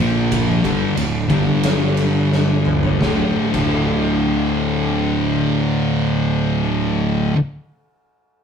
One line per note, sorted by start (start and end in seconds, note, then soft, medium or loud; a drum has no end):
0.00 0.60 A#1 medium
0.00 0.62 A#2 medium
0.00 0.63 F3 loud
0.00 0.63 A#3 loud
0.32 kick loud
0.32 ride medium
0.63 0.94 G1 medium
0.63 0.95 G2 medium
0.63 0.95 D3 medium
0.63 0.95 G3 loud
0.63 kick loud
0.63 ride medium
0.95 1.27 D1 medium
0.95 1.23 D2 medium
0.95 1.23 A2 medium
0.95 ride medium
1.28 2.97 G1 medium
1.28 2.99 G2 medium
1.28 2.99 D3 loud
1.28 3.00 G3 loud
1.28 kick loud
1.28 ride medium
1.63 snare loud
1.63 ride medium
1.97 ride medium
2.33 snare medium
2.65 mid tom medium
2.83 floor tom loud
3.00 3.20 D1 medium
3.00 3.51 D2 medium
3.00 3.53 A2 loud
3.00 3.56 D3 loud
3.00 kick loud
3.00 snare medium
3.52 7.30 D1 medium
3.52 7.33 D2 medium
3.52 7.34 A2 medium
3.52 kick medium
3.52 crash medium
3.56 7.35 D3 loud